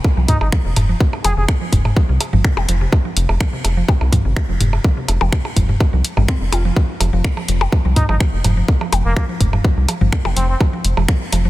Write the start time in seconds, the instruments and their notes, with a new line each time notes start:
0.04 kick, percussion blips
0.17 analog synth bass C2, synth arpeggio sound F3
0.28 synth arpeggio sound C3, muted trumpet D#4, kick, closed hi-hat, mid tom
0.41 analog synth bass G#1, muted trumpet D#4, percussion blips
0.52 synth arpeggio sound F3, finger snap, kick
0.65 analog synth bass F1, synth arpeggio sound C3
0.76 analog synth bass F1, closed hi-hat, mid tom, percussion blips
0.89 synth arpeggio sound F3
1.00 synth arpeggio sound C3, kick
1.13 percussion blips
1.24 analog synth bass F1, synth arpeggio sound F3, muted trumpet G#4, closed hi-hat, percussion blips
1.37 analog synth bass F1, synth arpeggio sound C3, muted trumpet G#4
1.48 finger snap, kick, percussion blips
1.61 synth arpeggio sound F3
1.72 analog synth bass F1, synth arpeggio sound C3, kick, closed hi-hat, mid tom
1.85 mid tom, percussion blips
1.96 synth arpeggio sound F3, kick
2.09 analog synth bass C2, synth arpeggio sound C3
2.21 closed hi-hat, percussion blips
2.33 analog synth bass G#1, synth arpeggio sound F3, mid tom
2.44 synth arpeggio sound C3, finger snap, kick
2.57 analog synth bass F1, percussion blips
2.68 analog synth bass F1, synth arpeggio sound F3, closed hi-hat
2.81 synth arpeggio sound C3
2.92 kick, percussion blips
3.05 synth arpeggio sound F3
3.16 analog synth bass F1, synth arpeggio sound C3, closed hi-hat
3.29 analog synth bass F1, percussion blips
3.40 synth arpeggio sound F3, finger snap, kick
3.53 synth arpeggio sound C3
3.64 analog synth bass F1, closed hi-hat, percussion blips
3.77 synth arpeggio sound F3
3.88 synth arpeggio sound C3, kick, percussion blips
4.01 analog synth bass C2, percussion blips
4.12 synth arpeggio sound F3, kick, closed hi-hat, mid tom
4.25 analog synth bass G#1, synth arpeggio sound C3
4.36 finger snap, kick, percussion blips
4.49 analog synth bass F1, synth arpeggio sound F3
4.60 analog synth bass F1, synth arpeggio sound C3, closed hi-hat, mid tom
4.73 percussion blips
4.84 synth arpeggio sound F3, kick
4.97 synth arpeggio sound C3
5.08 analog synth bass F1, closed hi-hat, percussion blips
5.21 analog synth bass F1, synth arpeggio sound F3, percussion blips
5.32 synth arpeggio sound C3, finger snap, kick
5.45 percussion blips
5.56 analog synth bass F1, synth arpeggio sound F3, kick, closed hi-hat, mid tom
5.69 synth arpeggio sound C3, mid tom
5.80 kick, percussion blips
5.93 analog synth bass C2, synth arpeggio sound F3
6.05 closed hi-hat
6.17 analog synth bass G#1, synth arpeggio sound G3, mid tom, percussion blips
6.28 synth arpeggio sound C4, finger snap, kick
6.41 analog synth bass F1
6.52 analog synth bass F1, synth arpeggio sound F4, closed hi-hat, percussion blips
6.65 synth arpeggio sound F3
6.76 synth arpeggio sound F3, kick
7.00 analog synth bass F1, synth arpeggio sound F3, closed hi-hat, percussion blips
7.13 analog synth bass F1, synth arpeggio sound F3
7.24 finger snap, kick
7.37 synth arpeggio sound F3, percussion blips
7.48 analog synth bass F1, synth arpeggio sound F3, closed hi-hat
7.61 percussion blips
7.72 synth arpeggio sound F3, kick, percussion blips
7.85 analog synth bass C2, synth arpeggio sound F3
7.96 muted trumpet D#4, kick, closed hi-hat, mid tom
8.09 analog synth bass G#1, synth arpeggio sound F3, muted trumpet D#4, percussion blips
8.20 synth arpeggio sound F3, finger snap, kick
8.33 analog synth bass F1
8.44 analog synth bass F1, synth arpeggio sound F3, closed hi-hat, mid tom, percussion blips
8.57 synth arpeggio sound F3
8.68 kick
8.81 synth arpeggio sound F3, percussion blips
8.92 analog synth bass F1, synth arpeggio sound F3, closed hi-hat, percussion blips
9.05 analog synth bass F1, muted trumpet A#3
9.16 synth arpeggio sound F3, muted trumpet A#3, finger snap, kick, percussion blips
9.29 synth arpeggio sound F3
9.40 analog synth bass F1, kick, closed hi-hat, mid tom
9.53 synth arpeggio sound F3, mid tom, percussion blips
9.64 synth arpeggio sound F3, kick
9.77 analog synth bass C2
9.88 synth arpeggio sound F3, closed hi-hat, percussion blips
10.01 analog synth bass G#1, synth arpeggio sound F3, mid tom
10.12 finger snap, kick
10.25 analog synth bass F1, synth arpeggio sound F3, percussion blips
10.36 analog synth bass F1, synth arpeggio sound F3, muted trumpet C4, closed hi-hat
10.49 muted trumpet C4
10.61 synth arpeggio sound F3, kick, percussion blips
10.73 synth arpeggio sound F3
10.84 analog synth bass F1, closed hi-hat
10.97 analog synth bass F1, synth arpeggio sound F3, percussion blips
11.08 synth arpeggio sound F3, finger snap, kick
11.33 analog synth bass F1, synth arpeggio sound F3, closed hi-hat, percussion blips
11.45 synth arpeggio sound F3